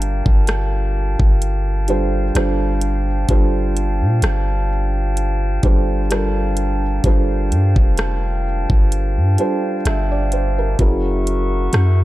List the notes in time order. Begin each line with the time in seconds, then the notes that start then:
Already playing: G1 G3 D4 F4 A4 A#4 F5 G5 A5
0.02 closed hi-hat
0.26 G1, kick
0.47 cross-stick, closed hi-hat
1.20 G1, kick
1.42 closed hi-hat
1.88 G3 D4 F4 A4 C5, closed hi-hat
2.35 G1 G3 D4 F4 A4 C5, cross-stick, closed hi-hat
2.81 closed hi-hat
3.29 G1 G3 D4 F4 A4 C5, kick, closed hi-hat
3.77 closed hi-hat
4.01 A#2
4.22 G1, cross-stick, closed hi-hat
5.17 closed hi-hat
5.63 G1 G3 D4 F4 A4 C5, kick, closed hi-hat
6.10 G3 D4 F4 A4 A#4, cross-stick, closed hi-hat
6.57 closed hi-hat
7.04 G1 G3 D4 F4 A4 C5, kick, closed hi-hat
7.51 G2, closed hi-hat
7.76 F1, kick
7.97 cross-stick, closed hi-hat
8.70 G1, kick
8.92 closed hi-hat
9.17 G2
9.38 G3 D4 F4 A4 C5, closed hi-hat
9.85 G1 E5, cross-stick, closed hi-hat
10.12 D5
10.32 C5, closed hi-hat
10.58 A#4
10.79 F#1 F#3 C#4 E4 G#4 A#4 E5 F#5 C#6, kick, closed hi-hat
11.27 closed hi-hat
11.73 F#2, cross-stick, closed hi-hat